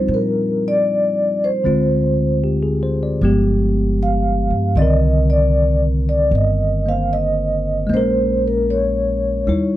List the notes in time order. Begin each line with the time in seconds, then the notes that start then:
Already playing: F3 G3 C4 D4 D#4 F4 C5
0.08 A#2
0.14 A#4
0.68 D5
1.44 C5
1.64 D2 D3 G#3 C4 F4
2.44 G4
2.63 G#4
2.83 C5
3.03 D5
3.21 G1 F3 G#3 B3 G4
4.03 F5
4.50 G2
4.75 C2 D#3 C4 D5 D#5
4.80 D3 A#4
5.30 D5
6.09 D5
6.31 G1
6.35 D#5
6.86 A#3 C5 F5
7.13 D#5
7.87 A#1 G#3 A#3
7.93 C#4 A#4 C5
8.48 A#4
8.70 C#5
9.47 D#2 G3 D#4 E4 C#5